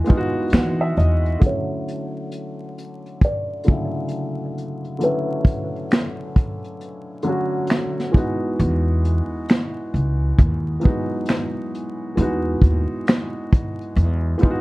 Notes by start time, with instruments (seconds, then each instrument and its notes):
Already playing: ambient pad F#3 G#3 F#4
0.04 upright piano E3 G#3 B3, closed hi-hat
0.09 upright piano D#4 F4, kick
0.17 upright piano F#4
0.50 upright bass E3, finger snap, closed hi-hat
0.54 upright piano F#5, snare
0.81 upright piano E5
0.97 upright bass E2, upright piano D#5, closed hi-hat
1.26 closed hi-hat
1.40 upright piano D3 F#3 A3, kick, closed hi-hat
1.45 upright piano C#4 E4, kalimba C#5
1.88 closed hi-hat
2.31 closed hi-hat
2.78 closed hi-hat
3.06 closed hi-hat
3.21 kalimba D5, kick, closed hi-hat
3.64 upright piano D3 F#3, closed hi-hat
3.68 upright piano C#3 A3 E4, kick
4.08 closed hi-hat
4.58 closed hi-hat
4.84 closed hi-hat
4.98 upright piano D3 F#3 A3, closed hi-hat
5.03 upright piano C#4 E4, kalimba B4
5.45 kick, closed hi-hat
5.76 closed hi-hat
5.91 finger snap, snare, closed hi-hat
6.36 kick, closed hi-hat
6.64 closed hi-hat
6.81 closed hi-hat
7.22 upright piano D3 F#3 A3, closed hi-hat
7.27 upright piano C#4 F#4
7.67 finger snap, closed hi-hat
7.71 snare
8.00 snare
8.11 upright piano E3 G#3 B3, kick
8.16 upright piano D#4 F#4, closed hi-hat
8.59 upright bass E2, closed hi-hat
9.05 closed hi-hat
9.48 finger snap, snare, closed hi-hat
9.94 upright bass C#2, closed hi-hat
10.39 upright bass D#2, kick, closed hi-hat
10.80 upright piano E3 F#3 B3, closed hi-hat
10.85 upright piano G#3 D#4 F#4, kick
11.26 finger snap, closed hi-hat
11.30 snare
11.75 closed hi-hat
12.16 upright bass E2, upright piano E3 G#3 B3, closed hi-hat
12.20 upright piano D#4 F#4
12.62 upright bass D#2, kick, closed hi-hat
13.07 finger snap, snare, closed hi-hat
13.53 kick, closed hi-hat
13.81 closed hi-hat
13.96 upright bass E2, closed hi-hat
14.38 upright piano E3 G#3 B3, closed hi-hat
14.42 upright piano D#4 F4, kick
14.51 upright piano F#4